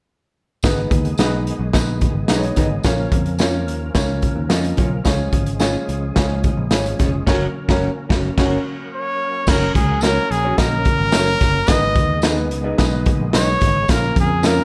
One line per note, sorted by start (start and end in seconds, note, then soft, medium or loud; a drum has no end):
0.63 0.85 G#1 loud
0.63 2.83 D#3 medium
0.63 2.83 G#3 medium
0.63 2.83 B3 medium
0.63 1.05 B3 medium
0.63 1.05 D#4 medium
0.63 2.83 G#4 medium
0.63 1.06 G#4 medium
0.63 1.06 B4 medium
0.63 kick loud
0.63 snare loud
0.63 closed hi-hat medium
0.63 tambourine medium
0.91 1.12 D#2 medium
0.91 kick medium
0.91 closed hi-hat medium
1.05 closed hi-hat soft
1.18 1.51 B1 medium
1.18 1.61 B3 medium
1.18 1.32 D#4 medium
1.18 1.61 D#4 medium
1.18 1.61 G#4 medium
1.18 1.32 G#4 medium
1.18 1.61 B4 medium
1.18 1.32 B4 medium
1.18 1.32 D#5 medium
1.18 snare loud
1.18 closed hi-hat medium
1.18 tambourine medium
1.47 closed hi-hat medium
1.59 1.70 B1 medium
1.73 2.06 A#1 medium
1.73 2.16 B3 medium
1.73 2.16 D#4 medium
1.73 2.16 G#4 medium
1.73 2.16 B4 medium
1.73 kick medium
1.73 snare loud
1.73 closed hi-hat medium
1.73 tambourine medium
2.01 kick medium
2.01 closed hi-hat medium
2.14 2.25 G#1 medium
2.28 2.50 B1 medium
2.28 2.71 B3 medium
2.28 2.42 D#4 medium
2.28 2.71 D#4 medium
2.28 2.71 G#4 medium
2.28 2.43 G#4 medium
2.28 2.36 B4 medium
2.28 2.43 B4 medium
2.28 2.43 D#5 medium
2.28 snare loud
2.28 closed hi-hat medium
2.28 tambourine medium
2.37 2.75 C#5 medium
2.43 closed hi-hat medium
2.56 2.78 G#1 medium
2.56 2.67 D#4 medium
2.56 2.68 G#4 medium
2.56 2.68 B4 medium
2.56 2.68 D#5 medium
2.56 kick medium
2.56 snare soft
2.56 closed hi-hat medium
2.83 3.06 A#1 medium
2.83 7.23 F3 medium
2.83 5.04 A#3 medium
2.83 9.44 C#4 medium
2.83 3.26 C#4 medium
2.83 3.26 F4 medium
2.83 5.04 A#4 medium
2.83 3.27 A#4 medium
2.83 3.27 C#5 medium
2.83 kick loud
2.83 snare loud
2.83 closed hi-hat medium
2.83 tambourine medium
3.12 3.67 F2 medium
3.12 kick medium
3.12 closed hi-hat medium
3.26 closed hi-hat medium
3.38 3.81 C#4 medium
3.38 3.53 C#4 medium
3.38 3.81 F4 medium
3.38 3.53 F4 medium
3.38 3.81 A#4 medium
3.38 3.53 A#4 medium
3.38 3.81 C#5 medium
3.38 3.54 C#5 medium
3.38 snare loud
3.38 closed hi-hat medium
3.38 tambourine medium
3.67 3.89 D#2 medium
3.67 closed hi-hat medium
3.95 4.27 C#2 medium
3.95 4.37 C#4 medium
3.95 4.37 F4 medium
3.95 4.37 A#4 medium
3.95 4.37 C#5 medium
3.95 kick medium
3.95 snare loud
3.95 closed hi-hat medium
3.95 tambourine medium
4.22 kick medium
4.22 closed hi-hat medium
4.36 4.47 D#2 medium
4.49 4.72 F2 medium
4.49 4.92 C#4 medium
4.49 4.63 C#4 medium
4.49 4.92 F4 medium
4.49 4.64 F4 medium
4.49 4.92 A#4 medium
4.49 4.64 A#4 medium
4.49 4.64 C#5 medium
4.49 4.92 D#5 medium
4.49 snare loud
4.49 closed hi-hat medium
4.49 tambourine medium
4.64 closed hi-hat medium
4.77 4.99 B1 medium
4.77 4.88 C#4 medium
4.77 4.88 F4 medium
4.77 4.89 A#4 medium
4.77 4.89 C#5 medium
4.77 kick medium
4.77 closed hi-hat medium
5.04 5.27 C#2 loud
5.04 7.25 G#3 medium
5.04 5.47 C#4 medium
5.04 5.47 F4 medium
5.04 5.47 G#4 medium
5.04 7.25 G#4 medium
5.04 5.47 C#5 medium
5.04 kick loud
5.04 snare loud
5.04 closed hi-hat medium
5.04 tambourine medium
5.32 5.75 G#1 medium
5.32 kick medium
5.32 closed hi-hat medium
5.46 closed hi-hat medium
5.59 6.02 C#4 medium
5.59 5.74 C#4 medium
5.59 6.02 F4 medium
5.59 5.74 F4 medium
5.59 6.02 G#4 medium
5.59 5.75 G#4 medium
5.59 6.02 C#5 medium
5.59 5.75 C#5 medium
5.59 snare medium
5.59 closed hi-hat medium
5.59 tambourine medium
5.89 6.10 C#2 medium
5.89 closed hi-hat medium
6.15 6.48 C#2 medium
6.15 6.58 C#4 medium
6.15 6.58 F4 medium
6.15 6.58 G#4 medium
6.15 6.58 C#5 medium
6.15 kick medium
6.15 snare loud
6.15 closed hi-hat medium
6.15 tambourine medium
6.44 kick medium
6.44 closed hi-hat medium
6.57 6.68 A#1 medium
6.71 6.93 G#1 loud
6.71 7.13 C#4 medium
6.71 6.85 C#4 medium
6.71 7.14 F4 medium
6.71 6.85 F4 medium
6.71 7.14 G#4 medium
6.71 6.85 G#4 medium
6.71 7.14 C#5 medium
6.71 6.86 C#5 medium
6.71 snare loud
6.71 closed hi-hat medium
6.71 tambourine medium
6.86 closed hi-hat medium
6.99 7.21 F1 medium
6.99 7.09 C#4 medium
6.99 7.10 F4 medium
6.99 7.10 G#4 medium
6.99 7.10 C#5 medium
6.99 kick medium
6.99 snare soft
6.99 closed hi-hat medium
7.26 7.46 F#1 loud
7.26 9.46 F#3 medium
7.26 9.46 A#3 medium
7.26 7.46 C#4 loud
7.26 7.47 C#4 medium
7.26 7.46 F#4 medium
7.26 7.47 F#4 medium
7.26 9.46 A#4 medium
7.26 7.46 A#4 loud
7.26 7.47 A#4 medium
7.26 7.46 C#5 loud
7.26 7.47 C#5 medium
7.26 kick loud
7.26 snare loud
7.26 crash medium
7.68 7.88 F#1 medium
7.68 7.87 C#4 medium
7.68 7.88 C#4 medium
7.68 7.87 F#4 medium
7.68 7.88 F#4 loud
7.68 7.88 A#4 medium
7.68 7.88 C#5 medium
7.68 7.89 C#5 loud
7.68 kick medium
7.68 snare loud
8.09 8.29 F#1 medium
8.09 8.29 C#4 medium
8.09 8.29 F#4 medium
8.09 8.29 A#4 medium
8.09 8.30 C#5 medium
8.09 kick medium
8.09 snare medium
8.37 8.57 F#1 medium
8.37 8.56 C#4 medium
8.37 8.57 C#4 medium
8.37 8.57 F#4 medium
8.37 8.57 A#4 medium
8.37 8.57 C#5 medium
8.37 kick medium
8.37 snare medium
8.37 crash medium
8.45 8.61 A#4 medium
8.94 9.51 C#5 medium
9.47 9.69 F#1 loud
9.47 11.67 F#3 medium
9.47 11.67 A#3 medium
9.47 11.67 C#4 medium
9.47 9.90 C#4 medium
9.47 9.90 F#4 medium
9.47 11.67 A#4 medium
9.47 9.90 A#4 medium
9.47 9.74 A#4 medium
9.47 9.90 C#5 medium
9.47 kick loud
9.47 snare loud
9.47 crash loud
9.47 tambourine medium
9.74 10.18 C#2 medium
9.74 10.04 G#4 medium
9.74 kick loud
9.74 closed hi-hat medium
10.01 10.16 C#4 medium
10.01 10.45 C#4 medium
10.01 10.45 F#4 medium
10.01 10.16 F#4 medium
10.01 10.33 A#4 medium
10.01 10.45 A#4 medium
10.01 10.16 A#4 medium
10.01 10.45 C#5 medium
10.01 10.17 C#5 medium
10.01 snare medium
10.01 closed hi-hat medium
10.01 tambourine medium
10.31 10.52 A#1 medium
10.31 10.60 G#4 medium
10.31 closed hi-hat medium
10.45 10.56 C#4 medium
10.45 10.55 F#4 medium
10.45 10.55 A#4 medium
10.45 10.55 C#5 medium
10.58 10.90 A#1 loud
10.58 11.00 C#4 medium
10.58 11.00 F#4 medium
10.58 10.65 G#4 medium
10.58 11.70 A#4 loud
10.58 11.00 D#5 medium
10.58 kick medium
10.58 snare loud
10.58 closed hi-hat medium
10.58 tambourine medium
10.65 11.03 A#4 medium
10.85 kick medium
10.85 closed hi-hat medium
11.00 11.11 G#1 medium
11.12 11.26 C#4 medium
11.12 11.55 C#4 medium
11.12 11.26 F#4 medium
11.12 11.56 F#4 medium
11.12 11.21 A4 soft
11.12 11.26 A#4 medium
11.12 11.27 C#5 medium
11.12 11.55 C#5 medium
11.12 snare loud
11.12 closed hi-hat medium
11.12 tambourine medium
11.20 11.58 A#4 medium
11.40 11.63 F#1 medium
11.40 kick medium
11.40 snare soft
11.40 closed hi-hat medium
11.67 11.97 G#1 loud
11.67 13.87 D#3 medium
11.67 13.87 G#3 medium
11.67 13.87 B3 medium
11.67 12.11 B3 medium
11.67 12.11 D#4 medium
11.67 13.87 G#4 medium
11.67 12.11 G#4 medium
11.67 12.11 B4 medium
11.67 12.24 D#5 loud
11.67 kick loud
11.67 snare loud
11.67 closed hi-hat medium
11.67 tambourine medium
11.95 12.51 D#2 medium
11.95 kick loud
11.95 closed hi-hat medium
12.22 12.65 B3 medium
12.22 12.36 D#4 medium
12.22 12.65 D#4 medium
12.22 12.65 G#4 medium
12.22 12.37 G#4 medium
12.22 12.65 B4 medium
12.22 12.37 B4 loud
12.22 12.37 D#5 medium
12.22 snare loud
12.22 closed hi-hat medium
12.22 tambourine medium
12.51 12.73 C#2 medium
12.51 closed hi-hat medium
12.64 12.76 D#4 soft
12.64 12.75 G#4 soft
12.64 12.75 B4 medium
12.64 12.75 D#5 medium
12.78 13.11 B1 medium
12.78 13.20 B3 medium
12.78 13.20 D#4 medium
12.78 13.20 G#4 medium
12.78 13.20 B4 medium
12.78 kick medium
12.78 snare loud
12.78 closed hi-hat medium
12.78 tambourine medium
13.06 kick medium
13.06 closed hi-hat medium
13.20 13.31 A#1 medium
13.33 13.55 B1 medium
13.33 13.76 B3 medium
13.33 13.46 D#4 medium
13.33 13.76 D#4 medium
13.33 13.47 G#4 medium
13.33 13.76 G#4 medium
13.33 13.76 B4 medium
13.33 13.47 B4 medium
13.33 13.92 C#5 medium
13.33 13.48 D#5 medium
13.33 snare loud
13.33 closed hi-hat medium
13.33 tambourine medium
13.61 13.83 G#1 medium
13.61 kick medium
13.61 snare soft
13.61 closed hi-hat medium
13.88 14.10 A#1 loud
13.88 14.64 F3 medium
13.88 14.30 A#3 medium
13.88 14.64 A#3 medium
13.88 14.30 C#4 medium
13.88 14.64 C#4 medium
13.88 14.31 F4 medium
13.88 14.64 A#4 medium
13.88 14.31 A#4 medium
13.88 14.18 A#4 loud
13.88 kick loud
13.88 snare loud
13.88 closed hi-hat loud
13.88 tambourine medium
14.16 14.59 F2 medium
14.16 14.48 G#4 medium
14.16 kick loud
14.16 closed hi-hat medium
14.43 14.64 A#3 medium
14.43 14.64 C#4 medium
14.43 14.56 C#4 medium
14.43 14.64 F4 medium
14.43 14.57 F4 medium
14.43 14.64 A#4 medium
14.43 14.57 A#4 medium
14.43 14.64 A#4 medium
14.43 14.57 C#5 medium
14.43 snare loud
14.43 closed hi-hat medium
14.43 tambourine medium